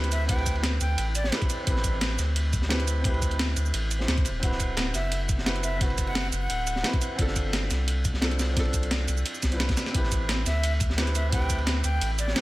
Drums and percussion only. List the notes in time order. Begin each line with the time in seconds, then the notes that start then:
0.04 closed hi-hat
0.12 closed hi-hat, ride, cabasa
0.29 kick, closed hi-hat, ride
0.38 ride
0.46 kick, closed hi-hat, ride, cabasa
0.55 ride
0.63 snare, closed hi-hat, ride
0.81 closed hi-hat, ride, cabasa
0.98 closed hi-hat, ride
1.15 closed hi-hat, ride, cabasa
1.24 snare
1.32 snare, closed hi-hat, ride
1.42 kick, closed hi-hat, ride
1.50 closed hi-hat, ride, cabasa
1.67 kick, closed hi-hat, ride
1.76 snare
1.84 kick, closed hi-hat, ride, cabasa
2.01 snare, closed hi-hat, ride
2.19 snare, closed hi-hat, ride, cabasa
2.36 closed hi-hat, ride
2.53 kick, closed hi-hat, ride, cabasa
2.62 snare
2.69 snare, closed hi-hat, ride
2.80 closed hi-hat
2.87 closed hi-hat, ride, cabasa
3.04 kick, closed hi-hat, ride
3.14 ride
3.22 kick, closed hi-hat, ride, cabasa
3.31 closed hi-hat, ride
3.39 snare, closed hi-hat, ride
3.56 closed hi-hat, ride, cabasa
3.66 cabasa
3.74 closed hi-hat, ride
3.91 closed hi-hat, ride, cabasa
4.00 snare
4.08 snare, closed hi-hat, ride
4.17 kick, closed hi-hat, ride
4.25 closed hi-hat, ride, cabasa
4.43 kick, closed hi-hat, ride
4.52 snare
4.59 kick, closed hi-hat, ride, cabasa
4.77 snare, closed hi-hat, ride
4.94 snare, closed hi-hat, ride, cabasa
5.11 closed hi-hat, ride
5.29 kick, closed hi-hat, ride, cabasa
5.38 snare
5.46 snare, closed hi-hat, ride
5.56 closed hi-hat
5.63 closed hi-hat, ride, cabasa
5.81 kick, closed hi-hat, ride
5.90 ride
5.98 kick, closed hi-hat, ride, cabasa
6.07 ride
6.15 snare, closed hi-hat, ride
6.32 closed hi-hat, ride, cabasa
6.50 closed hi-hat, ride
6.67 closed hi-hat, ride, cabasa
6.76 snare
6.83 snare, closed hi-hat, ride
6.93 kick, closed hi-hat, ride
7.02 closed hi-hat, ride, cabasa
7.18 kick, closed hi-hat, ride
7.28 snare
7.36 kick, closed hi-hat, ride, cabasa
7.53 snare, closed hi-hat, ride
7.71 snare, closed hi-hat, ride, cabasa
7.88 closed hi-hat, ride
8.05 kick, closed hi-hat, ride, cabasa
8.14 snare
8.22 snare, closed hi-hat, ride
8.31 closed hi-hat
8.39 snare, closed hi-hat, ride, cabasa
8.57 kick, snare, closed hi-hat, ride
8.65 ride
8.73 kick, closed hi-hat, ride, cabasa
8.83 closed hi-hat, ride
8.91 snare, closed hi-hat, ride
9.08 closed hi-hat, ride, cabasa
9.17 cabasa
9.26 closed hi-hat, ride
9.35 cabasa
9.42 kick, snare, closed hi-hat, ride, cabasa
9.52 closed hi-hat
9.60 snare, closed hi-hat, ride
9.69 kick, snare, closed hi-hat, ride
9.77 snare, closed hi-hat, cabasa
9.86 snare, ride
9.94 kick, closed hi-hat, ride
10.03 snare
10.12 kick, closed hi-hat, ride, cabasa
10.29 snare, closed hi-hat, ride
10.46 snare, closed hi-hat, ride, cabasa
10.63 closed hi-hat, ride
10.80 kick, closed hi-hat, ride, cabasa
10.90 snare
10.98 snare, closed hi-hat, ride
11.07 closed hi-hat
11.15 closed hi-hat, ride, cabasa
11.32 kick, closed hi-hat, ride
11.42 ride
11.50 kick, closed hi-hat, ride, cabasa
11.58 ride
11.67 snare, closed hi-hat, ride
11.84 closed hi-hat, ride, cabasa
12.01 closed hi-hat, ride
12.19 closed hi-hat, ride, cabasa
12.28 snare
12.36 snare, closed hi-hat, ride